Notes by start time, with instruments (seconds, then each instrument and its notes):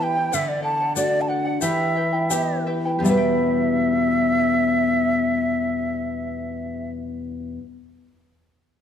Already playing: nylon-string guitar E3 B3 E4 G4
0.00 charango E4 B4 E5 G5, quena G5
0.16 charango E4 B4 G5
0.32 nylon-string guitar D3, charango A4 D5 F#5, quena E5, shaker
0.49 quena D5
0.62 charango A4 D5 F#5, quena A5
0.81 charango D5 F#5
0.95 nylon-string guitar A3 D4 F#4, charango A4 D5 F#5, quena D5, shaker
1.21 quena A5
1.28 charango A4 D5 F#5, quena F#5
1.45 charango D5 F#5
1.61 nylon-string guitar E3, charango E4 G4 B4 E5 G5, quena E5, shaker
1.95 charango E4 B4 E5 G5
2.13 charango E4 B4 G5
2.30 nylon-string guitar B3 E4 G4, charango E4 G4 B4 E5 G5, shaker
2.66 charango E4 B4 E5 G5
2.85 charango E4 B4 G5
2.99 nylon-string guitar E2 B2, charango G4
3.04 nylon-string guitar G3 B3 E4, quena E5, charango E5, shaker
3.09 charango E4 B4, nylon-string guitar B4
3.17 charango G5